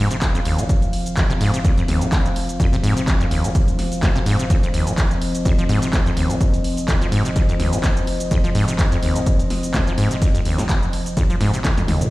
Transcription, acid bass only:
0.11 C3
0.22 F2
0.35 F2
0.46 D#2
0.58 C3
1.17 F2
1.30 C3
1.41 G#2
1.54 C3
1.65 F2
1.78 F2
1.88 D#2
2.01 C3
2.60 F2
2.73 C3
2.83 G#2
2.96 C3
3.07 F2
3.20 F2
3.31 D#2
3.44 C3
4.02 F2
4.15 C3
4.26 G#2
4.39 C3
4.50 F2
4.63 F2
4.74 D#2
4.87 C3
5.45 F2
5.58 F3
5.69 G#2
5.82 C3
5.93 F2
6.06 F2
6.17 D#2
6.30 C3
6.88 F2
7.01 F3
7.12 G#2
7.25 C3
7.36 F2
7.49 F2
7.60 D#2
7.73 C3
8.31 F2
8.44 F3
8.55 G#2
8.68 C3
8.79 F2
8.92 F2
9.03 D#2
9.16 C3
9.74 F2
9.87 F3
9.98 G#2
10.11 C3
10.22 F2
10.35 F2
10.46 D#2
10.59 C3
11.17 F2
11.30 F3
11.41 G#2
11.64 F2
11.78 F2
11.88 D#2
12.01 C3

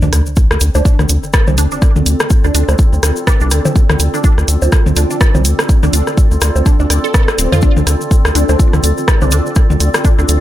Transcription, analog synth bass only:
0.02 D2
0.13 D2
0.51 D2
0.61 D2
0.75 D2
0.99 D2
1.09 D2
1.48 C2
1.58 D2
1.96 D2
2.06 D2
2.44 D2
2.55 D2
2.69 D2
2.93 D2
3.03 D2
3.41 C2
3.51 D2
3.89 D2
4.00 D2
4.38 D2
4.48 D2
4.62 D2
4.86 D2
4.97 D2
5.35 C2
5.45 D2
5.83 D2
5.93 D2
6.31 D2
6.42 D2
6.56 D2
6.80 D2
6.90 D2
7.38 D1
7.52 F2
7.77 D2
7.87 D2
8.25 D2
8.35 D2
8.49 D2
8.73 D2
8.84 D2
9.22 C2
9.32 D2
9.70 D2
9.80 D2
10.19 D2
10.29 D2

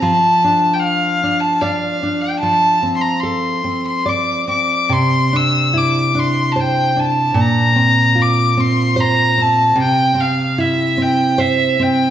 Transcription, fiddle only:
0.00 A5
0.74 G5
0.79 F5
1.40 A5
1.61 F5
2.21 G5
2.39 A5
2.96 C6
3.01 A#5
3.20 C6
3.87 C6
4.09 D6
4.49 D6
4.93 C6
5.36 E6
5.78 D6
6.19 C6
6.52 A5
6.60 G5
7.00 A5
7.40 A#5
8.22 D6
8.60 C6
9.00 A#5
9.41 A5
9.81 G5
10.21 F5
10.60 E5
11.02 G5
11.40 E5
11.82 G5

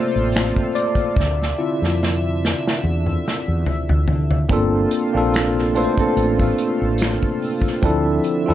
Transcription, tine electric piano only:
Already playing: A3 A#3 C4 F4 C5 D5 E5
0.75 D5
1.58 C4 E4 F4
4.49 A#3 C4 D4 F4
4.53 A4
5.13 A#3 C4 D4 F4 A4
5.73 A3 C4 D4 F4
5.78 B4
5.84 C5
7.82 F3 C4 D4 E4 A4
8.46 C4 D4 E4 F4
8.50 A4

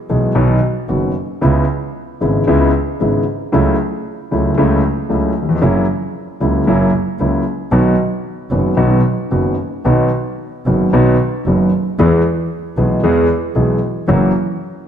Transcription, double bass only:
0.10 B1
0.36 B1
0.89 F#1
1.43 C#2
2.22 G#1
2.48 C#2
3.01 G#1
3.54 C#2
4.33 C#2
4.58 C#2
5.12 C#2
5.63 F#1
6.42 C#2
6.68 F#1
7.19 C#2
7.72 B1
8.51 F#1
8.77 B1
9.32 F#1
9.86 B1
10.66 F#1
10.92 B1
11.45 F#1
11.99 E2
12.77 B1
13.04 E2
13.55 B1
14.08 F#1

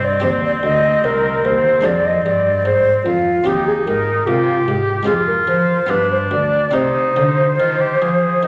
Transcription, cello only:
Already playing: G2
0.24 D#2
0.63 D2
1.04 C2
1.44 D#2
1.85 F2
2.25 G2
2.65 G#2
3.06 F2
3.46 D#2
3.86 G#2
4.26 C3
4.67 G#2
5.06 F2
5.47 F3
5.89 G2
6.31 D2
6.73 C3
7.16 D3
7.59 D#3
8.01 F3
8.44 D#3

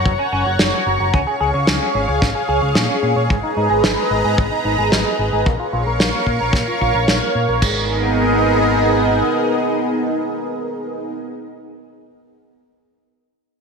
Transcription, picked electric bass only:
0.05 F#1
0.32 F#1
0.46 F#1
0.59 F#1
0.86 F#1
1.00 F#1
1.14 C#2
1.41 C#2
1.54 C#2
1.68 C#2
1.95 G#1
2.08 C#2
2.22 G#1
2.49 C#2
2.62 C#2
2.76 A#2
3.03 A#2
3.16 A#2
3.30 G#1
3.57 G#2
3.70 G#1
3.84 G#1
4.11 G#1
4.24 G#2
4.38 G#1
4.65 G#1
4.78 G#1
4.92 G#1
5.19 G#1
5.32 G#1
5.46 A#1
5.73 A#1
5.86 A#1
6.00 A#1
6.26 A#2
6.41 A#1
6.53 A#2
6.81 A#1
6.94 A#1
7.08 A#1
7.35 A#2
7.48 A#1
7.62 G#1

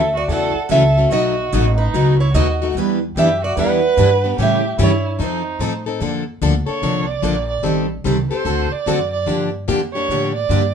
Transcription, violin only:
Already playing: A4
0.15 F#4
0.31 A4
0.71 A4
1.11 F#4
1.78 D#4
2.19 E4
2.33 F#4
3.16 G4
3.44 F#4
3.59 B4
4.40 G4
4.80 E4
5.21 D#4
6.67 C#5
7.07 D5
7.49 D5
8.31 C5
8.72 D5
9.13 D5
9.93 C#5
10.36 D5

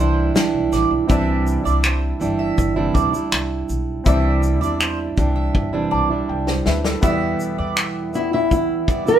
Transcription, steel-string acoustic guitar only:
Already playing: E3
0.00 G3 D4 E4
0.34 E3 G3 D4 E4
1.08 C3 E3 G3 D4 E4
1.64 G3 D4 E4
2.20 E3 G3 D4 E4
2.76 C3 E3 G3 D4 E4
3.13 G3 D4 E4
4.06 C3 E3 G3 D4 E4
4.61 G3 D4 E4
5.17 E3 G3 D4 E4
5.73 C3 E3 G3 D4 E4
6.10 G3 D4 E4
7.03 E2 B2 E3 G3 B3 E4
8.13 E3 G3 B3 E4
8.88 E3 G3 B3 E4
9.06 E3 G3 B3 E4

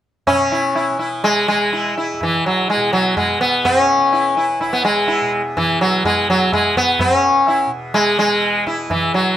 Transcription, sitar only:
0.27 C#4
0.52 E4
0.75 E4
0.99 E4
1.24 G#3
1.48 G#3
1.73 E4
1.98 E4
2.23 E3
2.46 F#3
2.70 G#3
2.93 F#3
3.17 G#3
3.41 B3
3.65 C#4
4.13 E4
4.37 E4
4.61 E4
4.73 B3
4.85 G#3
5.08 E4
5.57 E3
5.81 F#3
6.05 G#3
6.30 F#3
6.53 G#3
6.77 B3
7.01 C#4
7.48 E4
7.94 G#3
8.19 G#3
8.67 E4
8.91 E3
9.14 F#3

